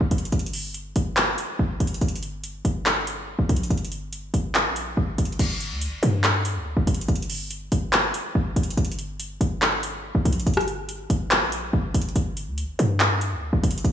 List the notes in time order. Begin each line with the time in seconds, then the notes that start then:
0.01 G1
0.11 G1, closed hi-hat
0.18 closed hi-hat
0.25 closed hi-hat
0.32 G1, closed hi-hat
0.39 closed hi-hat
0.46 closed hi-hat
0.53 open hi-hat
0.74 closed hi-hat
0.96 G1, closed hi-hat
1.17 clap, closed hi-hat
1.38 closed hi-hat
1.59 G1
1.80 G1, closed hi-hat
1.87 closed hi-hat
1.94 closed hi-hat
2.01 G1, closed hi-hat
2.08 closed hi-hat
2.16 closed hi-hat
2.23 closed hi-hat
2.44 closed hi-hat
2.65 G1, closed hi-hat
2.86 clap, closed hi-hat
3.07 closed hi-hat
3.39 G1
3.49 A#1, closed hi-hat
3.56 closed hi-hat
3.63 closed hi-hat
3.70 G1, closed hi-hat
3.78 closed hi-hat
3.85 closed hi-hat
3.92 closed hi-hat
4.13 closed hi-hat
4.34 G1, closed hi-hat
4.55 clap, closed hi-hat
4.66 A#1
4.76 closed hi-hat
4.97 G1
5.18 G1, closed hi-hat
5.25 closed hi-hat
5.32 closed hi-hat
5.39 G1, closed hi-hat, crash
5.61 closed hi-hat
5.71 D2
5.81 closed hi-hat
5.87 G1
6.03 G2, closed hi-hat
6.24 clap, closed hi-hat
6.45 closed hi-hat
6.55 D2
6.77 G1
6.87 G1, closed hi-hat
6.94 closed hi-hat
7.01 closed hi-hat
7.08 G1, closed hi-hat
7.15 closed hi-hat
7.22 closed hi-hat
7.30 open hi-hat
7.51 closed hi-hat
7.72 G1, closed hi-hat
7.93 clap, closed hi-hat
8.14 closed hi-hat
8.35 G1
8.56 G1, closed hi-hat
8.63 closed hi-hat
8.70 closed hi-hat
8.77 G1, closed hi-hat
8.85 closed hi-hat
8.92 closed hi-hat
8.99 closed hi-hat
9.20 closed hi-hat
9.41 G1, closed hi-hat
9.62 clap, closed hi-hat
9.83 closed hi-hat
10.15 G1
10.25 A#1, closed hi-hat
10.33 closed hi-hat
10.40 closed hi-hat
10.46 G1, closed hi-hat
10.54 cross-stick, closed hi-hat
10.61 closed hi-hat
10.68 closed hi-hat
10.89 closed hi-hat
11.10 G1, closed hi-hat
11.31 clap, closed hi-hat
11.42 A#1
11.52 closed hi-hat
11.73 G1
11.94 G1, closed hi-hat
12.02 closed hi-hat
12.09 closed hi-hat
12.16 G1, closed hi-hat
12.37 closed hi-hat
12.47 D2
12.58 closed hi-hat
12.63 G1
12.79 G2, closed hi-hat
13.00 clap, closed hi-hat
13.21 closed hi-hat
13.32 D2
13.53 G1
13.63 G1, closed hi-hat
13.71 closed hi-hat
13.78 closed hi-hat
13.84 G1, closed hi-hat